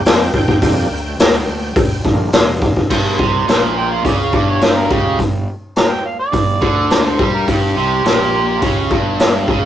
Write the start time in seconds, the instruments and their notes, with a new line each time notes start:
Already playing: tonewheel organ G5
0.05 fingered electric bass F2, snare, open hi-hat
0.34 fingered electric bass D#2, tonewheel organ G5, kick
0.48 kick
0.61 fingered electric bass F2, tonewheel organ D3 G3 A#3, kick, open hi-hat
0.91 fingered electric bass D2
1.19 fingered electric bass D2, snare, open hi-hat
1.47 fingered electric bass D2
1.76 fingered electric bass D2, kick, open hi-hat
2.05 fingered electric bass A#1, tonewheel organ D3 G3 A#3, kick
2.33 fingered electric bass F1, snare, open hi-hat
2.62 kick
2.76 kick
2.90 fingered electric bass G1, distorted electric guitar G2, kick, crash
3.18 fingered electric bass C2, distorted electric guitar C3, kick
3.47 fingered electric bass A#1, distorted electric guitar A#2, snare, open hi-hat
3.77 harmonica G5
3.92 harmonica F5
4.05 fingered electric bass C#2, distorted electric guitar C#3, harmonica D5, kick, open hi-hat
4.19 harmonica F5
4.33 fingered electric bass G1, distorted electric guitar G2, harmonica D5, kick
4.50 harmonica C#5
4.61 harmonica C5, snare, open hi-hat
4.77 harmonica A#4
4.90 fingered electric bass C#2, distorted electric guitar C#3, harmonica G4, kick
5.18 fingered electric bass G1, distorted electric guitar G2, kick, open hi-hat
5.76 harmonica A#5, snare, open hi-hat
5.90 harmonica G5
6.05 harmonica F5
6.20 harmonica D5
6.33 fingered electric bass G1, distorted electric guitar G2, kick, open hi-hat
6.61 fingered electric bass D2, distorted electric guitar D3, kick
6.90 snare, open hi-hat
7.05 harmonica C5
7.19 fingered electric bass G2, distorted electric guitar G3, kick
7.34 harmonica A#4
7.47 fingered electric bass G1, distorted electric guitar G2, harmonica G4, kick, open hi-hat
7.76 fingered electric bass C2, distorted electric guitar C3
8.04 fingered electric bass A#1, distorted electric guitar A#2, snare, open hi-hat
8.62 fingered electric bass C#2, distorted electric guitar C#3, kick, open hi-hat
8.91 fingered electric bass G1, distorted electric guitar G2, kick
9.19 snare, open hi-hat
9.48 fingered electric bass C#2, distorted electric guitar C#3, kick